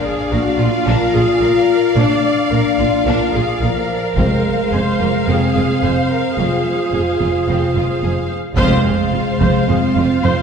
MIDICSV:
0, 0, Header, 1, 9, 480
1, 0, Start_track
1, 0, Tempo, 550964
1, 1715, Time_signature, 4, 2, 24, 8
1, 9081, End_track
2, 0, Start_track
2, 0, Title_t, "Violin section"
2, 0, Program_c, 0, 48
2, 0, Note_on_c, 0, 77, 54
2, 3622, Note_off_c, 0, 77, 0
2, 3633, Note_on_c, 0, 77, 49
2, 7265, Note_off_c, 0, 77, 0
2, 7474, Note_on_c, 0, 77, 57
2, 9081, Note_off_c, 0, 77, 0
2, 9081, End_track
3, 0, Start_track
3, 0, Title_t, "Viola section"
3, 0, Program_c, 1, 48
3, 53, Note_on_c, 1, 68, 53
3, 279, Note_on_c, 1, 66, 54
3, 280, Note_off_c, 1, 68, 0
3, 517, Note_off_c, 1, 66, 0
3, 523, Note_on_c, 1, 65, 52
3, 759, Note_off_c, 1, 65, 0
3, 762, Note_on_c, 1, 70, 58
3, 993, Note_on_c, 1, 68, 52
3, 999, Note_off_c, 1, 70, 0
3, 1233, Note_on_c, 1, 70, 59
3, 1234, Note_off_c, 1, 68, 0
3, 1714, Note_off_c, 1, 70, 0
3, 1714, Note_on_c, 1, 74, 56
3, 2194, Note_on_c, 1, 70, 48
3, 2195, Note_off_c, 1, 74, 0
3, 2435, Note_off_c, 1, 70, 0
3, 2438, Note_on_c, 1, 65, 46
3, 2672, Note_off_c, 1, 65, 0
3, 2673, Note_on_c, 1, 70, 53
3, 2914, Note_off_c, 1, 70, 0
3, 2914, Note_on_c, 1, 68, 46
3, 3151, Note_on_c, 1, 70, 52
3, 3155, Note_off_c, 1, 68, 0
3, 4113, Note_off_c, 1, 70, 0
3, 4118, Note_on_c, 1, 72, 46
3, 4357, Note_off_c, 1, 72, 0
3, 4358, Note_on_c, 1, 70, 43
3, 4597, Note_off_c, 1, 70, 0
3, 4602, Note_on_c, 1, 68, 50
3, 5079, Note_off_c, 1, 68, 0
3, 5082, Note_on_c, 1, 72, 42
3, 5316, Note_on_c, 1, 70, 40
3, 5319, Note_off_c, 1, 72, 0
3, 5556, Note_off_c, 1, 70, 0
3, 5564, Note_on_c, 1, 68, 44
3, 7206, Note_off_c, 1, 68, 0
3, 7473, Note_on_c, 1, 72, 77
3, 7697, Note_off_c, 1, 72, 0
3, 7716, Note_on_c, 1, 68, 35
3, 7786, Note_off_c, 1, 68, 0
3, 7955, Note_on_c, 1, 65, 35
3, 8025, Note_off_c, 1, 65, 0
3, 8188, Note_on_c, 1, 72, 42
3, 8414, Note_off_c, 1, 72, 0
3, 8440, Note_on_c, 1, 68, 37
3, 8510, Note_off_c, 1, 68, 0
3, 8680, Note_on_c, 1, 65, 42
3, 8750, Note_off_c, 1, 65, 0
3, 8915, Note_on_c, 1, 72, 51
3, 9081, Note_off_c, 1, 72, 0
3, 9081, End_track
4, 0, Start_track
4, 0, Title_t, "String section"
4, 0, Program_c, 2, 48
4, 7465, Note_on_c, 2, 72, 70
4, 7466, Note_on_c, 2, 65, 66
4, 7470, Note_on_c, 2, 77, 73
4, 7476, Note_on_c, 2, 60, 67
4, 9081, Note_off_c, 2, 60, 0
4, 9081, Note_off_c, 2, 65, 0
4, 9081, Note_off_c, 2, 72, 0
4, 9081, Note_off_c, 2, 77, 0
4, 9081, End_track
5, 0, Start_track
5, 0, Title_t, "Violin section"
5, 0, Program_c, 3, 48
5, 0, Note_on_c, 3, 74, 41
5, 270, Note_on_c, 3, 70, 40
5, 339, Note_off_c, 3, 70, 0
5, 505, Note_on_c, 3, 65, 45
5, 575, Note_off_c, 3, 65, 0
5, 753, Note_on_c, 3, 62, 55
5, 977, Note_off_c, 3, 62, 0
5, 987, Note_on_c, 3, 65, 41
5, 1057, Note_off_c, 3, 65, 0
5, 1237, Note_on_c, 3, 70, 41
5, 1307, Note_off_c, 3, 70, 0
5, 1719, Note_on_c, 3, 62, 43
5, 1941, Note_off_c, 3, 62, 0
5, 2200, Note_on_c, 3, 70, 39
5, 2270, Note_off_c, 3, 70, 0
5, 2435, Note_on_c, 3, 65, 39
5, 2505, Note_off_c, 3, 65, 0
5, 2673, Note_on_c, 3, 62, 52
5, 2897, Note_off_c, 3, 62, 0
5, 2915, Note_on_c, 3, 65, 42
5, 2984, Note_off_c, 3, 65, 0
5, 3152, Note_on_c, 3, 70, 40
5, 3221, Note_off_c, 3, 70, 0
5, 3628, Note_on_c, 3, 60, 44
5, 3630, Note_on_c, 3, 72, 41
5, 3634, Note_off_c, 3, 74, 0
5, 3855, Note_off_c, 3, 60, 0
5, 4110, Note_on_c, 3, 68, 28
5, 4180, Note_off_c, 3, 68, 0
5, 4353, Note_on_c, 3, 65, 32
5, 4423, Note_off_c, 3, 65, 0
5, 4595, Note_on_c, 3, 60, 47
5, 4819, Note_off_c, 3, 60, 0
5, 4830, Note_on_c, 3, 65, 31
5, 4899, Note_off_c, 3, 65, 0
5, 5076, Note_on_c, 3, 68, 28
5, 5145, Note_off_c, 3, 68, 0
5, 5557, Note_on_c, 3, 60, 32
5, 5780, Note_off_c, 3, 60, 0
5, 6036, Note_on_c, 3, 68, 26
5, 6106, Note_off_c, 3, 68, 0
5, 6280, Note_on_c, 3, 65, 28
5, 6350, Note_off_c, 3, 65, 0
5, 6530, Note_on_c, 3, 60, 39
5, 6747, Note_off_c, 3, 60, 0
5, 6766, Note_on_c, 3, 65, 30
5, 6836, Note_off_c, 3, 65, 0
5, 6997, Note_on_c, 3, 68, 29
5, 7067, Note_off_c, 3, 68, 0
5, 7264, Note_off_c, 3, 72, 0
5, 7485, Note_on_c, 3, 72, 53
5, 9081, Note_off_c, 3, 72, 0
5, 9081, End_track
6, 0, Start_track
6, 0, Title_t, "French horn section"
6, 0, Program_c, 4, 60
6, 0, Note_on_c, 4, 62, 75
6, 712, Note_off_c, 4, 62, 0
6, 763, Note_on_c, 4, 65, 84
6, 1706, Note_on_c, 4, 62, 75
6, 1719, Note_off_c, 4, 65, 0
6, 2651, Note_off_c, 4, 62, 0
6, 2666, Note_on_c, 4, 65, 70
6, 3151, Note_off_c, 4, 65, 0
6, 3157, Note_on_c, 4, 53, 63
6, 3636, Note_off_c, 4, 53, 0
6, 3637, Note_on_c, 4, 56, 67
6, 4597, Note_off_c, 4, 56, 0
6, 4618, Note_on_c, 4, 60, 64
6, 5554, Note_on_c, 4, 65, 60
6, 5567, Note_off_c, 4, 60, 0
6, 7201, Note_off_c, 4, 65, 0
6, 7478, Note_on_c, 4, 56, 72
6, 8401, Note_off_c, 4, 56, 0
6, 8428, Note_on_c, 4, 60, 59
6, 8894, Note_on_c, 4, 65, 65
6, 8911, Note_off_c, 4, 60, 0
6, 9081, Note_off_c, 4, 65, 0
6, 9081, End_track
7, 0, Start_track
7, 0, Title_t, "Cello section"
7, 0, Program_c, 5, 48
7, 279, Note_on_c, 5, 46, 41
7, 348, Note_off_c, 5, 46, 0
7, 515, Note_on_c, 5, 46, 43
7, 585, Note_off_c, 5, 46, 0
7, 755, Note_on_c, 5, 46, 54
7, 824, Note_off_c, 5, 46, 0
7, 987, Note_on_c, 5, 46, 44
7, 1057, Note_off_c, 5, 46, 0
7, 1225, Note_on_c, 5, 46, 43
7, 1295, Note_off_c, 5, 46, 0
7, 1706, Note_on_c, 5, 46, 58
7, 1776, Note_off_c, 5, 46, 0
7, 2190, Note_on_c, 5, 46, 35
7, 2260, Note_off_c, 5, 46, 0
7, 2432, Note_on_c, 5, 46, 39
7, 2502, Note_off_c, 5, 46, 0
7, 2671, Note_on_c, 5, 46, 53
7, 2741, Note_off_c, 5, 46, 0
7, 2921, Note_on_c, 5, 46, 42
7, 2991, Note_off_c, 5, 46, 0
7, 3156, Note_on_c, 5, 46, 37
7, 3226, Note_off_c, 5, 46, 0
7, 3635, Note_on_c, 5, 41, 54
7, 3704, Note_off_c, 5, 41, 0
7, 4121, Note_on_c, 5, 41, 36
7, 4190, Note_off_c, 5, 41, 0
7, 4363, Note_on_c, 5, 41, 34
7, 4433, Note_off_c, 5, 41, 0
7, 4603, Note_on_c, 5, 41, 48
7, 4672, Note_off_c, 5, 41, 0
7, 4837, Note_on_c, 5, 41, 33
7, 4906, Note_off_c, 5, 41, 0
7, 5080, Note_on_c, 5, 41, 29
7, 5149, Note_off_c, 5, 41, 0
7, 5564, Note_on_c, 5, 41, 40
7, 5633, Note_off_c, 5, 41, 0
7, 6041, Note_on_c, 5, 41, 28
7, 6111, Note_off_c, 5, 41, 0
7, 6272, Note_on_c, 5, 41, 27
7, 6342, Note_off_c, 5, 41, 0
7, 6513, Note_on_c, 5, 41, 41
7, 6582, Note_off_c, 5, 41, 0
7, 6751, Note_on_c, 5, 41, 29
7, 6821, Note_off_c, 5, 41, 0
7, 6991, Note_on_c, 5, 41, 27
7, 7061, Note_off_c, 5, 41, 0
7, 7471, Note_on_c, 5, 41, 75
7, 7696, Note_off_c, 5, 41, 0
7, 7718, Note_on_c, 5, 41, 36
7, 7788, Note_off_c, 5, 41, 0
7, 7951, Note_on_c, 5, 41, 34
7, 8021, Note_off_c, 5, 41, 0
7, 8196, Note_on_c, 5, 41, 49
7, 8266, Note_off_c, 5, 41, 0
7, 8437, Note_on_c, 5, 41, 40
7, 8507, Note_off_c, 5, 41, 0
7, 8677, Note_on_c, 5, 41, 39
7, 8747, Note_off_c, 5, 41, 0
7, 8915, Note_on_c, 5, 41, 52
7, 8984, Note_off_c, 5, 41, 0
7, 9081, End_track
8, 0, Start_track
8, 0, Title_t, "Double bass section"
8, 0, Program_c, 6, 48
8, 281, Note_on_c, 6, 34, 40
8, 350, Note_off_c, 6, 34, 0
8, 516, Note_on_c, 6, 34, 44
8, 586, Note_off_c, 6, 34, 0
8, 756, Note_on_c, 6, 34, 57
8, 825, Note_off_c, 6, 34, 0
8, 996, Note_on_c, 6, 34, 44
8, 1065, Note_off_c, 6, 34, 0
8, 1232, Note_on_c, 6, 34, 42
8, 1302, Note_off_c, 6, 34, 0
8, 1711, Note_on_c, 6, 34, 59
8, 1781, Note_off_c, 6, 34, 0
8, 2190, Note_on_c, 6, 34, 39
8, 2260, Note_off_c, 6, 34, 0
8, 2433, Note_on_c, 6, 34, 38
8, 2503, Note_off_c, 6, 34, 0
8, 2668, Note_on_c, 6, 34, 52
8, 2738, Note_off_c, 6, 34, 0
8, 2901, Note_on_c, 6, 34, 40
8, 2971, Note_off_c, 6, 34, 0
8, 3143, Note_on_c, 6, 34, 37
8, 3213, Note_off_c, 6, 34, 0
8, 3633, Note_on_c, 6, 29, 52
8, 3703, Note_off_c, 6, 29, 0
8, 4113, Note_on_c, 6, 29, 33
8, 4183, Note_off_c, 6, 29, 0
8, 4359, Note_on_c, 6, 29, 32
8, 4429, Note_off_c, 6, 29, 0
8, 4595, Note_on_c, 6, 29, 44
8, 4665, Note_off_c, 6, 29, 0
8, 4835, Note_on_c, 6, 29, 34
8, 4905, Note_off_c, 6, 29, 0
8, 5083, Note_on_c, 6, 29, 32
8, 5153, Note_off_c, 6, 29, 0
8, 5560, Note_on_c, 6, 29, 45
8, 5630, Note_off_c, 6, 29, 0
8, 6041, Note_on_c, 6, 29, 26
8, 6111, Note_off_c, 6, 29, 0
8, 6284, Note_on_c, 6, 29, 29
8, 6354, Note_off_c, 6, 29, 0
8, 6524, Note_on_c, 6, 29, 38
8, 6594, Note_off_c, 6, 29, 0
8, 6759, Note_on_c, 6, 29, 30
8, 6829, Note_off_c, 6, 29, 0
8, 6994, Note_on_c, 6, 29, 26
8, 7064, Note_off_c, 6, 29, 0
8, 7470, Note_on_c, 6, 29, 72
8, 7696, Note_off_c, 6, 29, 0
8, 7711, Note_on_c, 6, 29, 39
8, 7780, Note_off_c, 6, 29, 0
8, 7944, Note_on_c, 6, 29, 36
8, 8014, Note_off_c, 6, 29, 0
8, 8190, Note_on_c, 6, 29, 53
8, 8259, Note_off_c, 6, 29, 0
8, 8439, Note_on_c, 6, 29, 36
8, 8508, Note_off_c, 6, 29, 0
8, 8676, Note_on_c, 6, 29, 38
8, 8746, Note_off_c, 6, 29, 0
8, 8921, Note_on_c, 6, 29, 54
8, 8990, Note_off_c, 6, 29, 0
8, 9081, End_track
9, 0, Start_track
9, 0, Title_t, "Taiko and cinematic ensemble drums"
9, 3634, Note_on_c, 9, 41, 44
9, 3721, Note_off_c, 9, 41, 0
9, 7477, Note_on_c, 9, 41, 44
9, 7564, Note_off_c, 9, 41, 0
9, 8196, Note_on_c, 9, 41, 34
9, 8283, Note_off_c, 9, 41, 0
9, 9081, End_track
0, 0, End_of_file